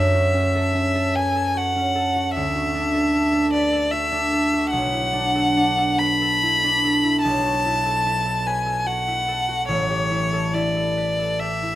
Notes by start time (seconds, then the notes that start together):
Already playing: F#2 F#4 A4 E5
0.14 F#4
0.34 C#4
0.55 A4
0.75 C#4
0.95 A4
1.15 B4 G#5
1.35 A4
1.55 F#4 F#5
1.76 C#4
1.95 A4
2.16 F#4
2.35 D2 E5
2.55 F#4
2.75 D4
2.94 A4
3.13 D4
3.32 A4
3.53 B4 D5
3.72 A4
3.91 F#4 E5
4.12 D4
4.33 A4
4.53 F#4
4.70 B1 F#5
4.93 E4
5.13 D4
5.35 A4
5.57 D4
5.78 A4
5.98 B4 B5
6.22 A4
6.43 E4
6.64 D4
6.84 A4
7.04 E4
7.22 B1 A5
7.45 F#4
7.65 E4
7.86 A4
8.06 E4
8.26 A4
8.46 B4 G#5
8.66 A4
8.86 F#4 F#5
9.08 E4
9.28 A4
9.49 F#4
9.68 A1 C#5
9.89 G4
10.11 E4
10.33 A4
10.54 E4 D5
10.77 A4
10.97 B4
11.19 A4
11.40 G4 E5
11.63 E4